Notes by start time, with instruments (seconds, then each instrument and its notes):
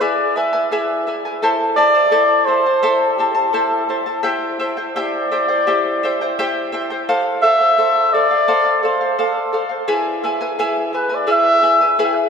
0.00 charango E4 G#4 B4 E5 G#5, muted trumpet D5
0.36 charango E4 B4 E5 G#5, muted trumpet E5
0.53 charango E4 B4 G#5
0.71 charango E4 G#4 B4 E5 G#5, muted trumpet E5
1.07 charango E4 B4 E5 G#5
1.25 charango E4 B4 G#5
1.42 charango E4 A4 C5 E5 A5
1.76 charango E4 C5 E5 A5, muted trumpet D5
1.94 charango E4 C5 A5
2.11 charango E4 A4 C5 E5 A5
2.46 charango E4 C5 E5 A5, muted trumpet C5
2.66 charango E4 C5 A5
2.83 charango E4 A4 C5 E5 A5
3.11 muted trumpet A4
3.16 charango E4 C5 E5, muted trumpet G4
3.20 charango A5
3.35 charango E4 C5 A5
3.52 charango E4 A4 C5 E5 A5, muted trumpet A4
3.89 charango E4 C5 E5 A5
4.06 charango E4 C5 A5
4.23 charango E4 G4 C5 E5 G5
4.59 charango E4 C5 E5 G5
4.77 charango E4 C5 G5
4.95 charango E4 G4 C5 E5 G5, muted trumpet D5
5.31 charango E4 C5 E5 G5
5.48 charango E4 C5 G5
5.67 charango E4 G4 C5 E5 G5
6.03 charango E4 C5 E5 G5
6.21 charango E4 C5 G5
6.39 charango E4 G4 C5 E5 G5
6.72 charango E4 C5 E5 G5
6.90 charango E4 C5 G5
7.09 charango A4 C5 F5
7.42 charango A4 C5 F5, muted trumpet E5
7.60 charango C5 F5
7.78 charango A4 C5
8.13 charango A4 C5 F5, muted trumpet D5
8.31 charango C5 F5
8.48 charango A4 C5 F5
8.83 charango A4 C5 F5, muted trumpet C5
9.01 charango C5 F5
9.19 charango A4 C5 F5, muted trumpet A4
9.53 charango A4 C5 F5
9.69 charango C5 F5
9.88 charango E4 G#4 B4 E5 G#5
10.24 charango E4 B4 E5 G#5
10.41 charango E4 B4 G#5
10.59 charango E4 G#4 B4 E5 G#5
10.93 charango E4 B4 E5 G#5, muted trumpet B4
11.09 charango E4 B4 G#5
11.15 muted trumpet D5
11.27 charango E4 G#4 B4 E5 G#5
11.32 muted trumpet E5
11.62 charango E4 B4 E5 G#5
11.81 charango E4 B4 G#5
11.99 charango E4 G#4 B4 E5 G#5, muted trumpet E5
12.05 muted trumpet G5
12.15 muted trumpet E5